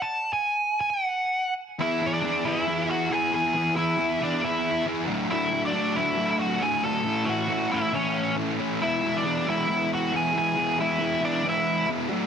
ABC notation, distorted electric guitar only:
X:1
M:4/4
L:1/8
Q:1/4=137
K:Emix
V:1 name="Distorted electric guitar"
z8 | [E,B,EG] [B,EG] [E,B,EG] [B,EG] [E,B,EG]2 [E,B,EG] [B,EG] | [E,B,EG] [B,EG] [E,B,EG] [B,EG] [E,B,EG]2 [E,B,EG] [F,A,DF] | [F,A,DF] [A,DF] [F,A,DF] [A,DF] [F,A,DF]2 [F,A,DF] [A,DF] |
[A,,E,A,CE] [A,CE] [E,A,CE] [A,CE] [A,,E,A,CE]2 [E,A,CE] [A,CE] | [E,G,B,E] [G,B,E] [E,G,B,E] [G,B,E] [E,G,B,E]2 [E,G,B,E] [G,B,E] | [E,G,B,E] [G,B,E] [E,G,B,E] [G,B,E] [E,G,B,E]2 [E,G,B,E] [F,A,DF] |]